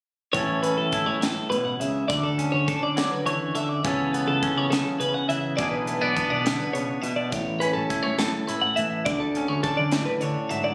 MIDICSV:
0, 0, Header, 1, 5, 480
1, 0, Start_track
1, 0, Key_signature, 3, "major"
1, 0, Tempo, 580271
1, 288, Time_signature, 6, 3, 24, 8
1, 8887, End_track
2, 0, Start_track
2, 0, Title_t, "Clean electric guitar"
2, 0, Program_c, 0, 27
2, 275, Note_on_c, 0, 73, 76
2, 517, Note_off_c, 0, 73, 0
2, 520, Note_on_c, 0, 71, 59
2, 639, Note_off_c, 0, 71, 0
2, 642, Note_on_c, 0, 69, 59
2, 879, Note_off_c, 0, 69, 0
2, 879, Note_on_c, 0, 73, 64
2, 1002, Note_off_c, 0, 73, 0
2, 1002, Note_on_c, 0, 69, 71
2, 1236, Note_off_c, 0, 69, 0
2, 1240, Note_on_c, 0, 71, 72
2, 1361, Note_off_c, 0, 71, 0
2, 1364, Note_on_c, 0, 78, 54
2, 1489, Note_off_c, 0, 78, 0
2, 1489, Note_on_c, 0, 76, 69
2, 1719, Note_off_c, 0, 76, 0
2, 1723, Note_on_c, 0, 74, 78
2, 1847, Note_off_c, 0, 74, 0
2, 1847, Note_on_c, 0, 69, 62
2, 2085, Note_on_c, 0, 73, 64
2, 2090, Note_off_c, 0, 69, 0
2, 2209, Note_off_c, 0, 73, 0
2, 2217, Note_on_c, 0, 69, 73
2, 2335, Note_off_c, 0, 69, 0
2, 2341, Note_on_c, 0, 74, 66
2, 2575, Note_off_c, 0, 74, 0
2, 2575, Note_on_c, 0, 71, 53
2, 2694, Note_off_c, 0, 71, 0
2, 2699, Note_on_c, 0, 73, 67
2, 2935, Note_off_c, 0, 73, 0
2, 2935, Note_on_c, 0, 76, 69
2, 3052, Note_off_c, 0, 76, 0
2, 3052, Note_on_c, 0, 74, 62
2, 3172, Note_off_c, 0, 74, 0
2, 3172, Note_on_c, 0, 73, 77
2, 3415, Note_off_c, 0, 73, 0
2, 3415, Note_on_c, 0, 71, 67
2, 3534, Note_off_c, 0, 71, 0
2, 3538, Note_on_c, 0, 69, 62
2, 3785, Note_off_c, 0, 69, 0
2, 3785, Note_on_c, 0, 73, 66
2, 3892, Note_on_c, 0, 69, 65
2, 3900, Note_off_c, 0, 73, 0
2, 4134, Note_off_c, 0, 69, 0
2, 4135, Note_on_c, 0, 71, 70
2, 4251, Note_off_c, 0, 71, 0
2, 4255, Note_on_c, 0, 78, 61
2, 4372, Note_off_c, 0, 78, 0
2, 4375, Note_on_c, 0, 76, 71
2, 4606, Note_on_c, 0, 74, 81
2, 4615, Note_off_c, 0, 76, 0
2, 4718, Note_off_c, 0, 74, 0
2, 4721, Note_on_c, 0, 71, 62
2, 4973, Note_off_c, 0, 71, 0
2, 4973, Note_on_c, 0, 74, 60
2, 5092, Note_off_c, 0, 74, 0
2, 5092, Note_on_c, 0, 71, 72
2, 5213, Note_off_c, 0, 71, 0
2, 5213, Note_on_c, 0, 74, 67
2, 5453, Note_off_c, 0, 74, 0
2, 5453, Note_on_c, 0, 71, 55
2, 5567, Note_off_c, 0, 71, 0
2, 5570, Note_on_c, 0, 73, 62
2, 5804, Note_off_c, 0, 73, 0
2, 5804, Note_on_c, 0, 76, 62
2, 5922, Note_off_c, 0, 76, 0
2, 5925, Note_on_c, 0, 74, 56
2, 6045, Note_off_c, 0, 74, 0
2, 6045, Note_on_c, 0, 73, 69
2, 6289, Note_on_c, 0, 71, 62
2, 6290, Note_off_c, 0, 73, 0
2, 6394, Note_off_c, 0, 71, 0
2, 6397, Note_on_c, 0, 69, 60
2, 6639, Note_off_c, 0, 69, 0
2, 6639, Note_on_c, 0, 73, 61
2, 6767, Note_off_c, 0, 73, 0
2, 6771, Note_on_c, 0, 69, 64
2, 7010, Note_off_c, 0, 69, 0
2, 7010, Note_on_c, 0, 71, 64
2, 7126, Note_on_c, 0, 78, 60
2, 7132, Note_off_c, 0, 71, 0
2, 7247, Note_on_c, 0, 76, 65
2, 7251, Note_off_c, 0, 78, 0
2, 7486, Note_off_c, 0, 76, 0
2, 7489, Note_on_c, 0, 74, 82
2, 7609, Note_on_c, 0, 69, 63
2, 7612, Note_off_c, 0, 74, 0
2, 7845, Note_off_c, 0, 69, 0
2, 7845, Note_on_c, 0, 73, 62
2, 7965, Note_off_c, 0, 73, 0
2, 7968, Note_on_c, 0, 69, 71
2, 8083, Note_on_c, 0, 74, 68
2, 8091, Note_off_c, 0, 69, 0
2, 8314, Note_off_c, 0, 74, 0
2, 8318, Note_on_c, 0, 71, 55
2, 8443, Note_off_c, 0, 71, 0
2, 8443, Note_on_c, 0, 73, 69
2, 8681, Note_off_c, 0, 73, 0
2, 8681, Note_on_c, 0, 76, 71
2, 8800, Note_off_c, 0, 76, 0
2, 8803, Note_on_c, 0, 74, 61
2, 8887, Note_off_c, 0, 74, 0
2, 8887, End_track
3, 0, Start_track
3, 0, Title_t, "Clean electric guitar"
3, 0, Program_c, 1, 27
3, 279, Note_on_c, 1, 45, 61
3, 287, Note_on_c, 1, 52, 51
3, 292, Note_on_c, 1, 61, 51
3, 297, Note_on_c, 1, 64, 54
3, 303, Note_on_c, 1, 69, 57
3, 529, Note_off_c, 1, 61, 0
3, 533, Note_on_c, 1, 61, 52
3, 768, Note_off_c, 1, 64, 0
3, 778, Note_on_c, 1, 64, 51
3, 1002, Note_off_c, 1, 45, 0
3, 1012, Note_on_c, 1, 45, 54
3, 1247, Note_on_c, 1, 47, 57
3, 1251, Note_off_c, 1, 45, 0
3, 1487, Note_off_c, 1, 47, 0
3, 1491, Note_on_c, 1, 49, 52
3, 1707, Note_off_c, 1, 64, 0
3, 1727, Note_off_c, 1, 49, 0
3, 1730, Note_on_c, 1, 50, 61
3, 1731, Note_off_c, 1, 52, 0
3, 1755, Note_off_c, 1, 61, 0
3, 1972, Note_on_c, 1, 61, 52
3, 2221, Note_on_c, 1, 62, 49
3, 2453, Note_on_c, 1, 54, 51
3, 2688, Note_off_c, 1, 54, 0
3, 2691, Note_on_c, 1, 52, 54
3, 2924, Note_off_c, 1, 50, 0
3, 2933, Note_off_c, 1, 52, 0
3, 2934, Note_on_c, 1, 50, 55
3, 3145, Note_off_c, 1, 61, 0
3, 3149, Note_off_c, 1, 62, 0
3, 3174, Note_off_c, 1, 50, 0
3, 3180, Note_on_c, 1, 49, 65
3, 3185, Note_on_c, 1, 52, 55
3, 3193, Note_on_c, 1, 59, 55
3, 3198, Note_on_c, 1, 61, 54
3, 3201, Note_off_c, 1, 69, 0
3, 3204, Note_on_c, 1, 69, 55
3, 3423, Note_off_c, 1, 59, 0
3, 3426, Note_on_c, 1, 59, 54
3, 3654, Note_off_c, 1, 61, 0
3, 3664, Note_on_c, 1, 61, 54
3, 3881, Note_off_c, 1, 49, 0
3, 3891, Note_on_c, 1, 49, 55
3, 4128, Note_off_c, 1, 61, 0
3, 4138, Note_on_c, 1, 61, 52
3, 4368, Note_off_c, 1, 52, 0
3, 4371, Note_on_c, 1, 52, 55
3, 4374, Note_off_c, 1, 49, 0
3, 4602, Note_off_c, 1, 69, 0
3, 4617, Note_off_c, 1, 61, 0
3, 4617, Note_on_c, 1, 47, 60
3, 4618, Note_off_c, 1, 52, 0
3, 4622, Note_on_c, 1, 52, 52
3, 4623, Note_off_c, 1, 59, 0
3, 4626, Note_on_c, 1, 59, 50
3, 4632, Note_on_c, 1, 62, 55
3, 4640, Note_on_c, 1, 68, 57
3, 4857, Note_off_c, 1, 59, 0
3, 4860, Note_on_c, 1, 57, 57
3, 4975, Note_off_c, 1, 57, 0
3, 4975, Note_on_c, 1, 59, 41
3, 5089, Note_off_c, 1, 62, 0
3, 5099, Note_on_c, 1, 62, 52
3, 5326, Note_off_c, 1, 47, 0
3, 5329, Note_on_c, 1, 50, 49
3, 5572, Note_off_c, 1, 50, 0
3, 5575, Note_on_c, 1, 49, 52
3, 5811, Note_off_c, 1, 49, 0
3, 5814, Note_on_c, 1, 47, 57
3, 6029, Note_off_c, 1, 62, 0
3, 6039, Note_off_c, 1, 68, 0
3, 6055, Note_off_c, 1, 47, 0
3, 6055, Note_off_c, 1, 59, 0
3, 6055, Note_on_c, 1, 45, 60
3, 6302, Note_on_c, 1, 61, 53
3, 6535, Note_on_c, 1, 64, 48
3, 6768, Note_off_c, 1, 45, 0
3, 6778, Note_on_c, 1, 45, 53
3, 7012, Note_off_c, 1, 64, 0
3, 7022, Note_on_c, 1, 64, 49
3, 7255, Note_off_c, 1, 52, 0
3, 7265, Note_on_c, 1, 52, 52
3, 7467, Note_off_c, 1, 45, 0
3, 7469, Note_off_c, 1, 64, 0
3, 7490, Note_on_c, 1, 50, 63
3, 7499, Note_off_c, 1, 52, 0
3, 7515, Note_off_c, 1, 61, 0
3, 7749, Note_on_c, 1, 61, 56
3, 7980, Note_on_c, 1, 62, 53
3, 8218, Note_on_c, 1, 45, 56
3, 8450, Note_off_c, 1, 62, 0
3, 8460, Note_on_c, 1, 62, 55
3, 8684, Note_on_c, 1, 54, 56
3, 8887, Note_off_c, 1, 45, 0
3, 8887, Note_off_c, 1, 50, 0
3, 8887, Note_off_c, 1, 54, 0
3, 8887, Note_off_c, 1, 61, 0
3, 8887, Note_off_c, 1, 62, 0
3, 8887, End_track
4, 0, Start_track
4, 0, Title_t, "Picked electric bass"
4, 0, Program_c, 2, 34
4, 285, Note_on_c, 2, 33, 84
4, 614, Note_off_c, 2, 33, 0
4, 645, Note_on_c, 2, 33, 80
4, 755, Note_off_c, 2, 33, 0
4, 885, Note_on_c, 2, 45, 78
4, 1104, Note_off_c, 2, 45, 0
4, 1244, Note_on_c, 2, 45, 78
4, 1355, Note_off_c, 2, 45, 0
4, 1490, Note_on_c, 2, 37, 88
4, 1708, Note_off_c, 2, 37, 0
4, 1736, Note_on_c, 2, 38, 84
4, 2061, Note_off_c, 2, 38, 0
4, 2097, Note_on_c, 2, 38, 82
4, 2203, Note_off_c, 2, 38, 0
4, 2337, Note_on_c, 2, 50, 80
4, 2552, Note_off_c, 2, 50, 0
4, 2697, Note_on_c, 2, 50, 79
4, 2804, Note_off_c, 2, 50, 0
4, 2939, Note_on_c, 2, 50, 87
4, 3154, Note_off_c, 2, 50, 0
4, 3188, Note_on_c, 2, 37, 85
4, 3508, Note_off_c, 2, 37, 0
4, 3540, Note_on_c, 2, 37, 76
4, 3646, Note_off_c, 2, 37, 0
4, 3774, Note_on_c, 2, 49, 83
4, 3991, Note_off_c, 2, 49, 0
4, 4135, Note_on_c, 2, 49, 80
4, 4243, Note_off_c, 2, 49, 0
4, 4375, Note_on_c, 2, 49, 78
4, 4592, Note_off_c, 2, 49, 0
4, 4622, Note_on_c, 2, 35, 81
4, 4946, Note_off_c, 2, 35, 0
4, 4982, Note_on_c, 2, 35, 77
4, 5088, Note_off_c, 2, 35, 0
4, 5226, Note_on_c, 2, 47, 81
4, 5438, Note_off_c, 2, 47, 0
4, 5580, Note_on_c, 2, 47, 76
4, 5687, Note_off_c, 2, 47, 0
4, 5818, Note_on_c, 2, 47, 85
4, 6034, Note_off_c, 2, 47, 0
4, 6060, Note_on_c, 2, 33, 78
4, 6385, Note_off_c, 2, 33, 0
4, 6425, Note_on_c, 2, 33, 75
4, 6529, Note_off_c, 2, 33, 0
4, 6667, Note_on_c, 2, 45, 79
4, 6878, Note_off_c, 2, 45, 0
4, 7025, Note_on_c, 2, 45, 78
4, 7129, Note_off_c, 2, 45, 0
4, 7264, Note_on_c, 2, 45, 85
4, 7476, Note_off_c, 2, 45, 0
4, 7495, Note_on_c, 2, 38, 81
4, 7821, Note_off_c, 2, 38, 0
4, 7857, Note_on_c, 2, 38, 77
4, 7964, Note_off_c, 2, 38, 0
4, 8100, Note_on_c, 2, 50, 84
4, 8313, Note_off_c, 2, 50, 0
4, 8457, Note_on_c, 2, 50, 76
4, 8563, Note_off_c, 2, 50, 0
4, 8692, Note_on_c, 2, 44, 90
4, 8887, Note_off_c, 2, 44, 0
4, 8887, End_track
5, 0, Start_track
5, 0, Title_t, "Drums"
5, 285, Note_on_c, 9, 42, 75
5, 286, Note_on_c, 9, 36, 93
5, 368, Note_off_c, 9, 42, 0
5, 369, Note_off_c, 9, 36, 0
5, 526, Note_on_c, 9, 42, 55
5, 609, Note_off_c, 9, 42, 0
5, 764, Note_on_c, 9, 42, 52
5, 767, Note_on_c, 9, 36, 65
5, 847, Note_off_c, 9, 42, 0
5, 850, Note_off_c, 9, 36, 0
5, 1012, Note_on_c, 9, 42, 77
5, 1020, Note_on_c, 9, 38, 91
5, 1095, Note_off_c, 9, 42, 0
5, 1102, Note_off_c, 9, 38, 0
5, 1255, Note_on_c, 9, 42, 54
5, 1338, Note_off_c, 9, 42, 0
5, 1496, Note_on_c, 9, 42, 58
5, 1579, Note_off_c, 9, 42, 0
5, 1736, Note_on_c, 9, 36, 93
5, 1737, Note_on_c, 9, 42, 73
5, 1818, Note_off_c, 9, 36, 0
5, 1820, Note_off_c, 9, 42, 0
5, 1976, Note_on_c, 9, 42, 58
5, 2059, Note_off_c, 9, 42, 0
5, 2217, Note_on_c, 9, 36, 66
5, 2217, Note_on_c, 9, 42, 49
5, 2300, Note_off_c, 9, 36, 0
5, 2300, Note_off_c, 9, 42, 0
5, 2457, Note_on_c, 9, 42, 69
5, 2465, Note_on_c, 9, 38, 95
5, 2540, Note_off_c, 9, 42, 0
5, 2547, Note_off_c, 9, 38, 0
5, 2702, Note_on_c, 9, 42, 57
5, 2785, Note_off_c, 9, 42, 0
5, 2939, Note_on_c, 9, 42, 51
5, 3022, Note_off_c, 9, 42, 0
5, 3181, Note_on_c, 9, 42, 66
5, 3182, Note_on_c, 9, 36, 91
5, 3263, Note_off_c, 9, 42, 0
5, 3264, Note_off_c, 9, 36, 0
5, 3427, Note_on_c, 9, 42, 52
5, 3509, Note_off_c, 9, 42, 0
5, 3662, Note_on_c, 9, 36, 68
5, 3664, Note_on_c, 9, 42, 50
5, 3745, Note_off_c, 9, 36, 0
5, 3747, Note_off_c, 9, 42, 0
5, 3905, Note_on_c, 9, 42, 66
5, 3912, Note_on_c, 9, 38, 93
5, 3987, Note_off_c, 9, 42, 0
5, 3995, Note_off_c, 9, 38, 0
5, 4140, Note_on_c, 9, 42, 55
5, 4223, Note_off_c, 9, 42, 0
5, 4382, Note_on_c, 9, 42, 53
5, 4465, Note_off_c, 9, 42, 0
5, 4619, Note_on_c, 9, 42, 68
5, 4621, Note_on_c, 9, 36, 99
5, 4702, Note_off_c, 9, 42, 0
5, 4704, Note_off_c, 9, 36, 0
5, 4859, Note_on_c, 9, 42, 51
5, 4942, Note_off_c, 9, 42, 0
5, 5100, Note_on_c, 9, 36, 67
5, 5102, Note_on_c, 9, 42, 49
5, 5183, Note_off_c, 9, 36, 0
5, 5184, Note_off_c, 9, 42, 0
5, 5342, Note_on_c, 9, 42, 75
5, 5350, Note_on_c, 9, 38, 96
5, 5425, Note_off_c, 9, 42, 0
5, 5432, Note_off_c, 9, 38, 0
5, 5583, Note_on_c, 9, 42, 57
5, 5666, Note_off_c, 9, 42, 0
5, 5819, Note_on_c, 9, 42, 57
5, 5902, Note_off_c, 9, 42, 0
5, 6058, Note_on_c, 9, 42, 69
5, 6059, Note_on_c, 9, 36, 97
5, 6140, Note_off_c, 9, 42, 0
5, 6142, Note_off_c, 9, 36, 0
5, 6298, Note_on_c, 9, 42, 54
5, 6381, Note_off_c, 9, 42, 0
5, 6537, Note_on_c, 9, 42, 48
5, 6538, Note_on_c, 9, 36, 64
5, 6620, Note_off_c, 9, 42, 0
5, 6621, Note_off_c, 9, 36, 0
5, 6771, Note_on_c, 9, 42, 71
5, 6779, Note_on_c, 9, 38, 88
5, 6854, Note_off_c, 9, 42, 0
5, 6861, Note_off_c, 9, 38, 0
5, 7019, Note_on_c, 9, 42, 53
5, 7102, Note_off_c, 9, 42, 0
5, 7254, Note_on_c, 9, 42, 51
5, 7337, Note_off_c, 9, 42, 0
5, 7496, Note_on_c, 9, 36, 92
5, 7496, Note_on_c, 9, 42, 68
5, 7579, Note_off_c, 9, 36, 0
5, 7579, Note_off_c, 9, 42, 0
5, 7734, Note_on_c, 9, 42, 50
5, 7817, Note_off_c, 9, 42, 0
5, 7970, Note_on_c, 9, 42, 49
5, 7972, Note_on_c, 9, 36, 63
5, 8053, Note_off_c, 9, 42, 0
5, 8055, Note_off_c, 9, 36, 0
5, 8202, Note_on_c, 9, 42, 66
5, 8209, Note_on_c, 9, 38, 89
5, 8284, Note_off_c, 9, 42, 0
5, 8292, Note_off_c, 9, 38, 0
5, 8446, Note_on_c, 9, 42, 51
5, 8528, Note_off_c, 9, 42, 0
5, 8690, Note_on_c, 9, 42, 51
5, 8773, Note_off_c, 9, 42, 0
5, 8887, End_track
0, 0, End_of_file